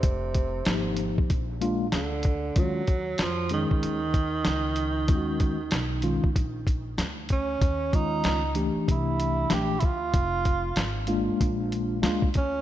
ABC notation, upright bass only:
X:1
M:4/4
L:1/16
Q:"Swing 16ths" 1/4=95
K:Dbmix
V:1 name="Upright bass" clef=bass
F,,,4 A,,,3 z B,,,4 =D,,4 | E,,4 F,,3 z E,,4 D,,4 | E,,4 C,,3 z B,,,4 =D,,4 | E,,4 D,,3 z =C,,4 B,,,2 =D,,2 |
F,,,4 A,,,3 z B,,,4 =D,,4 |]